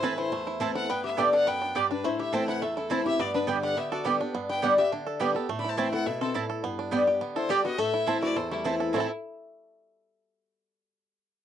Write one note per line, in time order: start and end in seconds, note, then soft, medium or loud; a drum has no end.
0.00 0.29 A2 medium
0.00 0.30 E3 medium
0.00 0.15 A3 medium
0.00 0.31 A3 medium
0.00 0.12 C4 loud
0.00 0.31 C4 medium
0.00 0.17 E4 medium
0.00 0.16 E4 medium
0.00 0.13 E4 loud
0.00 0.44 A4 medium
0.00 0.20 B4 medium
0.00 0.13 C5 loud
0.04 0.31 E4 loud
0.04 0.13 A5 medium
0.18 0.61 E4 medium
0.18 0.46 E4 medium
0.18 0.61 C5 medium
0.32 0.87 E2 medium
0.32 0.73 A3 medium
0.47 0.60 E4 medium
0.60 0.88 E3 medium
0.60 0.88 A3 medium
0.60 0.70 C4 loud
0.60 0.88 C4 loud
0.60 0.70 E4 medium
0.60 0.74 E4 medium
0.60 0.89 E4 medium
0.60 0.70 C5 medium
0.60 0.70 A5 loud
0.75 0.89 E4 medium
0.75 0.89 A4 medium
0.75 0.92 F#5 medium
0.89 1.44 G2 medium
0.89 1.30 B3 medium
0.89 1.04 B4 medium
0.89 1.04 G5 loud
1.04 1.17 G4 medium
1.04 1.20 E5 medium
1.17 1.45 D3 medium
1.17 1.46 G3 medium
1.17 1.27 B3 medium
1.17 1.46 B3 medium
1.17 1.27 G4 medium
1.17 1.33 G4 medium
1.17 1.46 G4 loud
1.17 1.59 A4 medium
1.17 1.28 D5 medium
1.17 1.33 D5 medium
1.17 1.28 G5 loud
1.33 1.60 D4 medium
1.33 1.47 A4 medium
1.33 1.49 F#5 loud
1.47 1.74 F#2 medium
1.47 1.88 B3 medium
1.47 1.76 B4 medium
1.47 1.77 G5 loud
1.62 1.89 D4 medium
1.75 2.03 G2 medium
1.75 1.85 B3 medium
1.75 1.85 G4 medium
1.75 2.04 G4 medium
1.75 1.91 G4 medium
1.75 1.90 D5 medium
1.75 1.85 D5 medium
1.75 1.85 G5 loud
1.91 2.04 D4 medium
1.91 2.05 D4 medium
1.91 2.06 B4 medium
2.04 2.59 A2 medium
2.04 2.45 A3 medium
2.04 2.19 E4 medium
2.04 2.19 C5 medium
2.19 2.47 E4 medium
2.19 2.32 G4 medium
2.19 2.34 E5 medium
2.33 2.60 E3 medium
2.33 2.61 A3 medium
2.33 2.42 C4 medium
2.33 2.61 C4 medium
2.33 2.42 E4 medium
2.33 2.61 E4 medium
2.33 2.74 A4 medium
2.33 2.43 C5 loud
2.33 2.48 C5 medium
2.33 2.47 G5 loud
2.33 2.43 A5 medium
2.48 2.76 E4 medium
2.48 2.61 A4 medium
2.48 2.64 F#5 medium
2.62 3.17 E2 medium
2.62 3.02 A3 medium
2.62 2.77 A4 medium
2.62 2.76 E5 medium
2.76 2.90 E4 medium
2.76 2.91 A4 medium
2.76 muted resonator guitar played with a steel bar stroke medium
2.90 3.05 E3 medium
2.90 3.05 A3 medium
2.90 3.00 C4 medium
2.90 3.05 C4 loud
2.90 3.00 E4 medium
2.90 3.05 E4 medium
2.90 3.06 E4 medium
2.90 3.04 E4 medium
2.90 3.05 C5 medium
2.90 3.00 C5 loud
2.90 3.00 A5 medium
3.05 3.19 C4 medium
3.05 3.19 E4 medium
3.05 3.19 G4 medium
3.05 3.21 E5 loud
3.19 3.74 G2 medium
3.19 3.47 B3 medium
3.19 3.34 G4 medium
3.19 3.34 D5 loud
3.34 3.74 D4 medium
3.34 3.47 D4 medium
3.34 3.43 B4 medium
3.47 3.75 D3 medium
3.47 3.75 G3 medium
3.47 3.57 B3 medium
3.47 3.76 B3 medium
3.47 3.76 B3 loud
3.47 3.57 G4 loud
3.47 3.76 G4 medium
3.47 3.57 D5 loud
3.47 3.58 G5 medium
3.63 4.03 G4 medium
3.63 3.77 A4 medium
3.63 3.78 F#5 medium
3.77 4.04 D3 medium
3.77 4.18 B3 medium
3.77 3.92 G4 medium
3.77 3.91 E5 medium
3.92 4.05 F#4 medium
3.92 4.32 A4 medium
3.92 4.05 D5 medium
4.05 4.19 D3 medium
4.05 4.20 G3 medium
4.05 4.14 B3 medium
4.05 4.20 B3 medium
4.05 4.14 G4 medium
4.05 4.46 G4 medium
4.05 4.19 G4 loud
4.05 4.15 D5 loud
4.05 4.15 G5 loud
4.20 4.35 B3 soft
4.20 4.60 D4 medium
4.20 4.34 G4 medium
4.34 4.89 G2 medium
4.34 4.62 B3 medium
4.49 4.77 G4 medium
4.49 4.62 B4 medium
4.49 4.65 G5 loud
4.62 4.77 D3 medium
4.62 4.77 G3 medium
4.62 4.72 B3 loud
4.62 5.04 B3 medium
4.62 4.78 B3 medium
4.62 4.72 G4 medium
4.62 4.76 G4 medium
4.62 4.78 B4 medium
4.62 4.72 D5 medium
4.62 4.77 F#5 medium
4.62 4.72 G5 medium
4.77 4.92 B3 soft
4.77 4.91 G4 medium
4.77 4.91 G4 loud
4.77 5.18 G4 medium
4.77 4.86 E5 loud
4.92 5.19 D3 medium
4.92 5.32 D4 medium
5.07 5.35 A4 medium
5.20 5.34 D3 medium
5.20 5.35 G3 loud
5.20 5.29 B3 medium
5.20 5.49 B3 medium
5.20 5.35 B3 medium
5.20 5.30 G4 medium
5.20 5.33 G4 loud
5.20 5.30 D5 loud
5.20 5.30 G5 loud
5.34 5.49 B3 medium
5.34 5.48 G4 medium
5.34 5.49 A4 medium
5.49 6.04 A2 medium
5.49 5.77 A3 medium
5.59 5.69 D5 medium
5.59 5.70 B5 medium
5.64 5.92 E4 medium
5.69 5.77 C5 medium
5.69 5.79 A5 medium
5.77 5.92 E3 medium
5.77 5.92 A3 medium
5.77 6.18 A3 medium
5.77 5.87 C4 medium
5.77 5.93 C4 medium
5.77 5.87 E4 loud
5.77 5.91 E4 medium
5.77 5.87 C5 loud
5.77 5.93 C5 medium
5.77 5.92 G5 medium
5.77 5.87 A5 loud
5.92 6.07 C4 medium
5.92 6.05 E4 medium
5.92 6.06 A4 medium
5.92 6.08 F#5 loud
6.06 6.34 B2 medium
6.06 6.34 E4 medium
6.06 6.22 A4 medium
6.06 6.21 E5 medium
6.21 6.34 C4 medium
6.21 6.48 A4 medium
6.21 6.30 A4 medium
6.34 6.62 A2 medium
6.34 6.44 C4 medium
6.34 6.44 E4 medium
6.34 6.64 E4 medium
6.34 6.45 C5 loud
6.34 6.45 A5 medium
6.50 6.64 A4 medium
6.64 7.18 G2 medium
6.64 6.91 B3 medium
6.79 7.19 D4 medium
6.91 7.07 D3 medium
6.91 7.07 G3 medium
6.91 7.01 B3 medium
6.91 7.20 B3 medium
6.91 7.07 B3 medium
6.91 7.02 G4 medium
6.91 7.06 G4 medium
6.91 7.02 D5 loud
6.91 7.02 G5 loud
7.07 7.21 B3 soft
7.07 7.21 G4 medium
7.07 7.47 G4 medium
7.21 7.48 D3 medium
7.21 7.62 B3 medium
7.36 7.50 E4 medium
7.36 7.76 A4 medium
7.36 7.51 C5 medium
7.49 7.64 D3 medium
7.49 7.64 G3 medium
7.49 7.59 B3 medium
7.49 7.65 B3 loud
7.49 7.59 G4 medium
7.49 7.64 G4 medium
7.49 7.79 G4 medium
7.49 7.63 G4 loud
7.49 7.64 D5 medium
7.49 7.59 D5 medium
7.49 7.59 G5 loud
7.64 7.78 B3 medium
7.64 7.79 B3 medium
7.64 7.78 F#4 medium
7.64 7.78 G4 medium
7.64 7.80 D#5 medium
7.78 8.33 A2 medium
7.78 8.19 A3 medium
7.78 8.22 A4 medium
7.78 8.22 E5 loud
7.94 8.21 E4 medium
8.06 8.34 E3 medium
8.06 8.35 A3 medium
8.06 8.16 C4 medium
8.06 8.35 C4 medium
8.06 8.17 E4 medium
8.06 8.35 E4 medium
8.06 8.35 A4 medium
8.06 8.17 C5 loud
8.06 8.17 A5 loud
8.22 8.62 E4 medium
8.22 8.36 F#4 medium
8.22 8.38 D5 loud
8.36 8.91 E2 medium
8.36 8.51 E4 medium
8.36 8.77 A4 medium
8.36 8.51 C5 medium
8.51 8.64 G3 medium
8.51 8.91 A3 medium
8.51 8.60 E4 medium
8.64 8.92 E3 medium
8.64 8.93 A3 medium
8.64 8.74 C4 medium
8.64 8.93 C4 medium
8.64 8.74 E4 medium
8.64 8.94 E4 medium
8.64 8.93 E4 loud
8.64 8.74 C5 medium
8.64 8.75 A5 medium
8.80 8.94 A4 medium
8.93 9.05 A2 medium
8.93 9.06 E3 medium
8.93 9.08 A3 medium
8.93 9.06 A3 medium
8.93 9.05 C4 medium
8.93 9.06 C4 medium
8.93 9.09 C4 medium
8.93 9.06 E4 medium
8.93 9.08 E4 medium
8.93 9.06 E4 medium
8.93 9.08 A4 medium
8.93 9.06 C5 medium
8.93 9.06 A5 medium
8.98 9.10 E4 medium
8.98 9.11 A4 medium